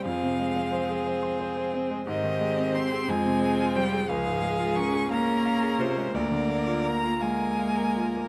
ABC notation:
X:1
M:6/8
L:1/16
Q:3/8=59
K:Fm
V:1 name="Violin"
f8- f2 z2 | [K:Bbdor] e4 c'2 a4 g2 | f4 d'2 b4 c2 | =d4 b2 a6 |]
V:2 name="Violin"
A12 | [K:Bbdor] G6 F6 | A6 B6 | B6 B6 |]
V:3 name="Grand piano"
F,, C, A, C c A c c' c A C A, | [K:Bbdor] A,, E, A, C c A F,, C, A, F c A | D,, A,, A, F B A f b f A F A, | =D,, =D, B, F B F f b f B F B, |]
V:4 name="Viola"
C12 | [K:Bbdor] C6 C6 | A,6 D6 | B,6 B,6 |]
V:5 name="Cello" clef=bass
F,8- F,2 z2 | [K:Bbdor] E,4 C2 A,4 G,2 | F,4 D2 B,4 C,2 | =D,4 B,2 A,6 |]